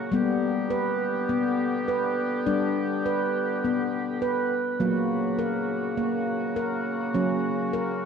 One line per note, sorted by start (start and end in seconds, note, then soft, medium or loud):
0.00 0.13 A#4 medium
0.12 4.63 D3 medium
0.12 2.42 G3 medium
0.12 4.63 B3 medium
0.12 0.71 B3 medium
0.12 4.63 G4 medium
0.70 1.29 B4 medium
1.29 1.88 B3 medium
1.88 2.47 B4 medium
2.46 4.77 G3 medium
2.46 3.05 D4 medium
3.06 3.64 B4 medium
3.65 4.23 B3 medium
4.22 4.81 B4 medium
4.80 8.05 C#3 medium
4.80 7.10 F#3 medium
4.80 8.05 A#3 medium
4.80 5.39 A#3 medium
4.80 8.05 F#4 medium
5.39 5.97 A#4 medium
5.97 6.56 A#3 medium
6.56 7.15 A#4 medium
7.14 8.05 F#3 medium
7.14 7.73 C#4 medium
7.73 8.05 A#4 medium